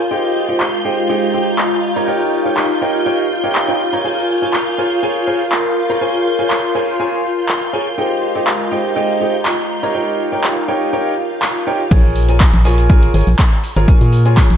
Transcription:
Already playing: F4 A#4 F5 C6 G6
0.11 G#3 D#4 G4 G#4 C5 G5
0.28 D#5
0.48 D#4 G4 G#4 C5 G5
0.60 clap
0.85 D#4 G4 G#4 C5 G5 A#5
1.09 D#4 G4 G#4 C5 G5
1.34 D#4 G4 G#4 C5 G5
1.58 clap
1.83 D#4
1.96 D#4 G4 A#4 C#5 A#5
2.08 D#4 G4 A#4 C#5 G5
2.45 D#4 G4 A#4 C#5 G5
2.57 clap
2.81 D#4 G4 A#4 C#5 F5 G5
3.06 D#4 G4 A#4 C#5 G5
3.44 D#4 G4 A#4 C#5 G5
3.55 clap
3.68 D#4 G4 A#4 C#5 G5
3.93 D#4 G4 A#4 C#5 A#5
4.04 F4 G#4 A#4 C#5 G#5
4.34 C6
4.42 F4 G#4 A#4 C#5 G#5
4.53 clap
4.78 F4 G#4 A#4 C#5 G#5
5.03 F4 G#4 A#4 C#5 G#5
5.27 F4 G#4 A#4 C#5 G#5
5.52 clap
5.90 F4 G#4 A#4 C#5 A#5
6.01 F4 G#4 A#4 C#5 G#5
6.39 F4 G#4 A#4 C#5 G#5
6.50 clap
6.75 F4 G#4 A#4 C#5 G#5
7.00 F4 G#4 A#4 C#5 G#5
7.48 clap
7.73 F4 G#4 A#4 C#5 G#5
7.98 G#3 D#4 G4 G#4 C5 G5
8.11 D#5
8.35 D#4 G4 G#4 C5 G5
8.47 clap
8.71 D#4 G4 G#4 C5 G5
8.76 A#5
8.96 D#4 G4 G#4 C5 G5
9.21 D#4 G4 G#4 C5 G5
9.45 clap
9.70 D#4
9.81 D#4 G4 A#4 C#5 A#5
9.95 D#4 G4 A#4 C#5 G5
10.16 F5
10.32 D#4 G4 A#4 C#5 G5
10.44 clap
10.68 D#4 G4 A#4 C#5 G5
10.93 D#4 G4 A#4 C#5 G5
11.42 clap
11.67 D#4 G4 A#4 C#5 G5
11.91 A#1 F4 G#4 A#4 C#5 G#5, kick, crash, shaker
12.05 shaker
12.16 open hi-hat
12.29 F4 G#4 A#4 C#5 G#5, closed hi-hat, shaker
12.40 kick, clap, shaker
12.53 A#1, closed hi-hat, shaker
12.65 F4 G#4 A#4 C#5 G#5, open hi-hat
12.78 closed hi-hat, shaker
12.90 F4 G#4 A#4 C#5 G#5, kick, shaker
13.03 closed hi-hat, shaker
13.14 G#1 F4 G#4 A#4 C#5 G#5, open hi-hat
13.27 A#1, open hi-hat, shaker
13.39 kick, clap, shaker
13.53 shaker
13.64 open hi-hat
13.76 G#1 F4 G#4 A#4 C#5 A#5, closed hi-hat, shaker
13.88 F4 G#4 A#4 C#5 G#5, kick, shaker
14.01 A#2, open hi-hat, shaker
14.13 open hi-hat
14.25 F4 G#4 A#4 C#5 G#5, closed hi-hat, shaker
14.37 kick, clap, shaker
14.50 A#1, closed hi-hat, shaker

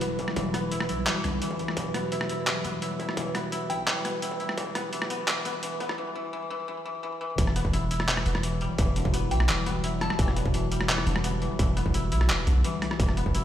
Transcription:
Already playing: E1 D3 F#3 G3 E4 B4
0.01 B3, closed hi-hat
0.19 E3, kick, closed hi-hat
0.28 cross-stick
0.36 E1 E3, kick, closed hi-hat
0.54 B3, cross-stick, closed hi-hat
0.72 E4, closed hi-hat
0.80 cross-stick
0.89 B1 E4, closed hi-hat
1.07 E1 E3, clap, closed hi-hat
1.24 B1 D3, cross-stick, closed hi-hat
1.42 E3, closed hi-hat
1.51 kick
1.59 E3, closed hi-hat
1.68 cross-stick
1.77 E1 E3, kick, closed hi-hat
1.94 B3, cross-stick, closed hi-hat
2.12 E4, closed hi-hat
2.21 cross-stick
2.29 E4, closed hi-hat
2.47 E3, clap, closed hi-hat
2.65 E1 B3, closed hi-hat
2.82 E4, closed hi-hat
3.00 E4, kick, closed hi-hat
3.09 cross-stick
3.17 E1 E3, kick, closed hi-hat
3.35 B3, cross-stick, closed hi-hat
3.52 E4, closed hi-hat
3.70 B1 E4 G5, closed hi-hat
3.87 E1 E3, clap, closed hi-hat
4.05 B3, cross-stick, closed hi-hat
4.22 E4, closed hi-hat
4.31 kick
4.40 E4, closed hi-hat
4.49 cross-stick
4.57 E1 E3, kick, closed hi-hat
4.75 B3, cross-stick, closed hi-hat
4.93 E3, closed hi-hat
5.02 cross-stick
5.10 B3, closed hi-hat
5.28 E3, clap, closed hi-hat
5.45 E1 B3, closed hi-hat
5.63 E3, closed hi-hat
5.80 B3, kick, closed hi-hat
5.89 cross-stick
5.98 E3
6.15 E3
6.33 E3
6.50 E3
6.68 E3
6.86 E3
7.03 E3
7.21 E3
7.38 E1 E3 F#3 G3 E4, kick, closed hi-hat
7.47 cross-stick
7.56 B3, closed hi-hat
7.65 kick
7.73 E4, closed hi-hat
7.91 E4, closed hi-hat
8.00 cross-stick
8.08 E3, clap, closed hi-hat
8.17 cross-stick
8.26 E1 B3, closed hi-hat
8.35 cross-stick
8.43 E3, closed hi-hat
8.61 G3, closed hi-hat
8.78 E1 E3, kick, closed hi-hat
8.96 D3, closed hi-hat
9.05 kick
9.14 B3, closed hi-hat
9.31 B1 E3 G5, closed hi-hat
9.40 cross-stick
9.49 E1 E3, clap, closed hi-hat
9.66 B3, closed hi-hat
9.84 E4, closed hi-hat
10.01 E4 A5, cross-stick, closed hi-hat
10.10 cross-stick
10.19 E1 E3, kick, closed hi-hat
10.28 cross-stick
10.36 B3, closed hi-hat
10.45 kick
10.54 E3, closed hi-hat
10.72 G3, closed hi-hat
10.81 cross-stick
10.89 E3, clap, closed hi-hat
10.98 cross-stick
11.07 E1 D3, closed hi-hat
11.16 cross-stick
11.24 B3, closed hi-hat
11.42 E3, closed hi-hat
11.59 E1 E3, kick, closed hi-hat
11.77 B3, closed hi-hat
11.86 kick
11.94 E4, closed hi-hat
12.12 B1 E4, closed hi-hat
12.21 cross-stick
12.29 E1 E3, clap, closed hi-hat
12.47 B1 D3, closed hi-hat
12.64 E3, closed hi-hat
12.82 E3, cross-stick, closed hi-hat
12.91 cross-stick
13.00 E1 E3 A4, kick, closed hi-hat
13.09 cross-stick
13.17 B3, closed hi-hat
13.26 kick
13.35 E4, closed hi-hat

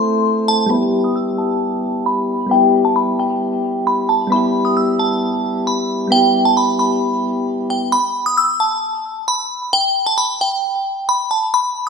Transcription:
Already playing: A3 C4 E4 A4 C5 C6
0.48 A5
0.66 G3 B3
0.71 E4 B5
0.75 G4
1.04 D#6
1.16 E6
1.38 A5
2.06 B5
2.46 G3 B3
2.51 E4 G4 G5
2.85 A5
2.96 B5
3.19 G5
3.87 B5
4.09 A5
4.27 G3 B3
4.32 E4 G4 B5
4.65 D#6
4.77 E6
4.99 A5
5.67 B5
6.08 G3 B3
6.12 E4 G5
6.16 G4
6.45 A5
6.57 B5
6.79 B5
7.70 G5
7.92 B5
8.26 D#6
8.37 E6
8.60 A5
9.28 B5
9.73 G5
10.06 A5
10.18 B5
10.41 G5
11.09 B5
11.31 A5
11.54 B5

